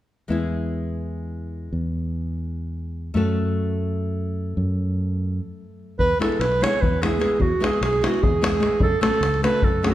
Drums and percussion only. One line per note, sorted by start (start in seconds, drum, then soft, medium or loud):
5.99 davul low medium
6.22 davul high soft
6.32 davul high soft
6.41 davul high soft
6.52 davul high soft
6.64 davul high medium
6.73 davul high soft
6.83 davul low medium
7.03 davul high medium
7.22 davul high soft
7.40 davul low medium
7.64 davul high medium
7.73 davul high soft
7.83 davul high medium
7.93 davul high soft
8.04 davul high medium
8.14 davul high soft
8.23 davul low medium
8.44 davul high medium
8.63 davul high soft
8.80 davul low medium
9.03 davul high medium
9.14 davul high soft
9.23 davul high medium
9.34 davul high soft
9.44 davul high medium
9.54 davul high soft
9.62 davul low medium
9.84 davul high medium